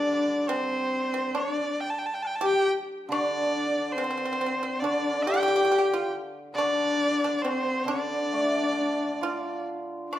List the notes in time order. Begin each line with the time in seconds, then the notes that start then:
Already playing: D3 G3 D4 D5
0.02 C#4
0.13 C4
0.48 C4 C5, low woodblock
1.14 C4
1.35 D4 D5, high woodblock
1.81 G5
1.90 A5
1.99 G5
2.06 A5
2.14 G5
2.23 A5, low woodblock
2.27 G5
2.36 A5
2.41 G4
2.46 G5
3.09 D3 D4 D5, high woodblock
3.93 C4 C5
3.98 C4, low woodblock
4.04 C4
4.11 C4
4.17 C4
4.25 C4
4.33 C4
4.41 C4
4.46 C4
4.63 C4
4.80 D3 D4 D5
4.85 high woodblock
5.23 G4 G5
5.27 G4
5.34 G4
5.43 G4
5.48 G4
5.56 G4
5.65 G4
5.72 G4, low woodblock
5.78 G4
5.94 F4
6.55 D3 D4 D5, high woodblock
7.24 D4
7.38 C5 D5
7.43 C4, high woodblock, low woodblock
7.84 D3 D4 D5
8.32 A3, high woodblock
8.76 D4
9.21 F4, low woodblock
10.12 D4 D5, high woodblock